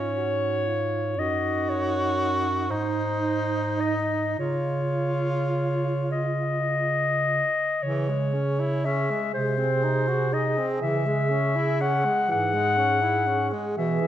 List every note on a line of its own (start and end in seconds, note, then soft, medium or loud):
0.00 1.19 G#2 soft
0.00 0.91 C#4 medium
0.00 0.19 F4 medium
0.00 1.20 C#5 medium
0.18 0.69 F#4 medium
0.68 1.18 F4 medium
1.18 2.72 F#2 soft
1.18 2.68 D#4 soft
1.18 2.73 F#4 medium
1.18 1.71 D#5 medium
1.69 2.42 C#5 medium
2.70 4.37 G#2 soft
2.70 4.35 D#4 medium
2.70 4.39 D#4 medium
2.70 3.82 C5 medium
3.80 4.38 D#5 medium
4.38 7.43 C#3 soft
4.38 7.44 F4 soft
4.38 6.94 F4 soft
4.38 6.08 C#5 soft
6.11 7.84 D#5 medium
7.82 9.09 C#3 medium
7.82 8.10 E3 soft
7.82 13.73 G#4 soft
7.82 8.86 C#5 medium
8.09 8.35 G#3 soft
8.34 8.61 C#4 soft
8.60 8.87 E4 soft
8.85 9.12 C#4 soft
8.85 9.33 E5 medium
9.10 9.34 G#3 soft
9.33 10.57 C3 medium
9.33 9.60 G#3 soft
9.33 10.35 C5 medium
9.58 9.85 C4 soft
9.83 10.09 D#4 soft
10.08 10.34 F#4 soft
10.33 10.59 D#4 soft
10.33 10.68 D#5 medium
10.58 10.81 C4 soft
10.82 12.05 C#3 medium
10.82 11.08 E3 soft
10.82 11.83 E5 medium
11.06 11.32 G#3 soft
11.31 11.57 C#4 soft
11.56 11.82 E4 medium
11.81 12.06 C#4 medium
11.81 12.30 F#5 medium
12.05 12.30 G#3 soft
12.29 13.52 G#2 medium
12.29 12.55 E3 soft
12.29 13.48 F#5 medium
12.54 12.79 G#3 soft
12.77 13.04 C#4 medium
13.02 13.28 E4 soft
13.27 13.54 C#4 soft
13.53 13.77 G#3 medium
13.76 14.02 B2 medium
13.76 14.07 E3 medium
13.76 14.07 G#4 medium
13.76 14.07 E5 medium
14.01 14.07 E3 medium